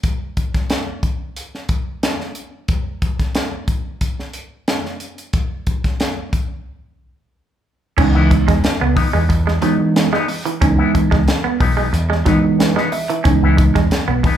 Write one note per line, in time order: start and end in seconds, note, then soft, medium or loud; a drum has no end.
0.03 kick loud
0.03 closed hi-hat medium
0.37 kick medium
0.37 closed hi-hat medium
0.54 kick medium
0.54 snare soft
0.54 closed hi-hat soft
0.70 snare loud
0.70 closed hi-hat medium
1.03 kick medium
1.03 closed hi-hat medium
1.36 closed hi-hat medium
1.55 snare soft
1.69 kick medium
1.69 closed hi-hat medium
2.03 snare loud
2.03 closed hi-hat medium
2.21 snare soft
2.35 closed hi-hat medium
2.68 kick loud
2.68 closed hi-hat medium
3.02 kick medium
3.02 closed hi-hat medium
3.20 kick medium
3.20 snare soft
3.20 closed hi-hat soft
3.35 snare loud
3.35 closed hi-hat medium
3.68 kick medium
3.68 closed hi-hat medium
4.01 kick medium
4.01 closed hi-hat medium
4.20 snare soft
4.33 closed hi-hat medium
4.68 snare loud
4.68 closed hi-hat loud
4.86 snare soft
5.00 closed hi-hat medium
5.18 closed hi-hat soft
5.33 kick loud
5.33 closed hi-hat medium
5.67 kick medium
5.67 closed hi-hat medium
5.84 kick medium
5.84 snare soft
5.84 closed hi-hat soft
6.00 snare medium
6.00 closed hi-hat medium
6.33 kick medium
6.33 closed hi-hat medium
7.97 8.41 C#2 loud
7.97 8.57 E3 medium
7.97 8.58 G#3 medium
7.97 8.58 B3 medium
7.97 8.12 C#4 loud
7.97 8.58 D#4 loud
7.97 muted clean electric guitar stroke soft
7.97 kick loud
7.97 crash loud
8.15 8.28 E3 medium
8.15 8.28 B3 medium
8.15 8.27 E4 medium
8.31 muted clean electric guitar stroke soft
8.31 kick medium
8.31 closed hi-hat medium
8.47 8.62 E2 medium
8.47 8.61 G#3 medium
8.47 muted clean electric guitar stroke soft
8.47 kick medium
8.47 snare soft
8.47 closed hi-hat medium
8.63 muted clean electric guitar stroke medium
8.63 muted picked electric bass stroke soft
8.63 snare loud
8.63 closed hi-hat medium
8.80 8.95 C#2 medium
8.80 8.94 B3 medium
8.80 muted clean electric guitar stroke medium
8.95 9.07 E3 medium
8.95 9.07 B3 medium
8.95 9.07 D#4 medium
8.95 muted clean electric guitar stroke soft
8.95 kick loud
8.95 open hi-hat medium
9.13 9.27 E2 medium
9.13 9.24 E3 medium
9.13 9.27 G#3 medium
9.13 9.24 B3 medium
9.13 9.23 D#4 medium
9.29 9.58 E2 loud
9.29 muted clean electric guitar stroke soft
9.29 kick medium
9.29 closed hi-hat medium
9.47 9.60 G#3 medium
9.47 snare soft
9.61 9.73 E3 medium
9.61 10.07 E3 medium
9.61 9.77 F#3 loud
9.61 10.08 G#3 medium
9.61 9.73 B3 medium
9.61 10.08 B3 medium
9.61 10.08 D#4 loud
9.61 9.73 D#4 medium
9.61 closed hi-hat medium
9.80 muted clean electric guitar stroke soft
9.96 muted clean electric guitar stroke soft
9.96 snare loud
9.96 closed hi-hat loud
10.13 10.26 E3 medium
10.13 10.26 G#3 medium
10.13 10.26 B3 medium
10.13 10.25 D#4 loud
10.13 snare soft
10.28 muted clean electric guitar stroke soft
10.28 open hi-hat medium
10.45 10.59 E3 medium
10.45 muted clean electric guitar stroke soft
10.45 closed hi-hat medium
10.61 10.77 C#2 medium
10.61 11.21 E3 medium
10.61 11.21 G#3 medium
10.61 11.22 B3 medium
10.61 10.76 C#4 loud
10.61 11.22 D#4 loud
10.61 muted clean electric guitar stroke soft
10.61 kick loud
10.61 closed hi-hat medium
10.78 10.91 E3 medium
10.78 10.91 B3 medium
10.78 10.91 E4 medium
10.95 muted clean electric guitar stroke soft
10.95 kick medium
10.95 closed hi-hat medium
11.11 11.25 C#2 medium
11.11 11.24 G#3 medium
11.11 muted clean electric guitar stroke medium
11.11 kick medium
11.11 snare soft
11.27 muted clean electric guitar stroke soft
11.27 snare loud
11.27 closed hi-hat medium
11.44 11.57 B3 medium
11.44 muted clean electric guitar stroke medium
11.60 11.89 B1 loud
11.60 11.71 E3 medium
11.60 11.71 B3 medium
11.60 11.72 D#4 medium
11.60 muted clean electric guitar stroke soft
11.60 kick medium
11.60 open hi-hat medium
11.77 11.88 E3 soft
11.77 11.90 G#3 medium
11.77 11.88 B3 medium
11.77 11.87 D#4 medium
11.93 12.21 E2 loud
11.93 muted clean electric guitar stroke soft
11.93 closed hi-hat medium
12.10 12.23 G#3 medium
12.10 snare soft
12.25 12.71 E3 medium
12.25 12.37 E3 medium
12.25 12.40 F#3 medium
12.25 12.71 G#3 medium
12.25 12.71 B3 medium
12.25 12.37 B3 medium
12.25 12.72 D#4 loud
12.25 12.37 D#4 medium
12.25 kick loud
12.25 snare soft
12.25 closed hi-hat medium
12.43 muted clean electric guitar stroke medium
12.58 12.90 B4 medium
12.58 muted clean electric guitar stroke soft
12.58 snare loud
12.58 closed hi-hat loud
12.76 12.90 E3 medium
12.76 12.89 G#3 medium
12.76 12.89 B3 medium
12.76 12.89 D#4 medium
12.76 snare soft
12.92 13.23 E5 medium
12.92 muted clean electric guitar stroke soft
12.92 open hi-hat medium
13.10 13.23 E3 medium
13.10 muted clean electric guitar stroke soft
13.10 closed hi-hat medium
13.24 13.69 C#2 medium
13.24 13.85 E3 medium
13.24 13.85 G#3 medium
13.24 13.85 B3 medium
13.24 13.39 C#4 loud
13.24 13.85 D#4 loud
13.24 muted clean electric guitar stroke soft
13.24 kick loud
13.24 closed hi-hat medium
13.43 13.56 E3 medium
13.43 13.55 B3 medium
13.43 13.55 E4 medium
13.58 muted clean electric guitar stroke soft
13.58 kick loud
13.58 closed hi-hat medium
13.75 13.89 E2 loud
13.75 13.88 G#3 medium
13.75 muted clean electric guitar stroke soft
13.75 kick medium
13.75 snare soft
13.75 closed hi-hat soft
13.90 muted picked electric bass stroke medium
13.90 muted clean electric guitar stroke soft
13.90 snare loud
13.90 closed hi-hat medium
14.08 14.22 B1 medium
14.08 14.21 B3 medium
14.08 muted clean electric guitar stroke medium
14.23 14.35 E3 medium
14.23 14.36 B3 medium
14.23 14.36 D#4 medium
14.23 muted clean electric guitar stroke soft
14.23 kick loud
14.23 open hi-hat medium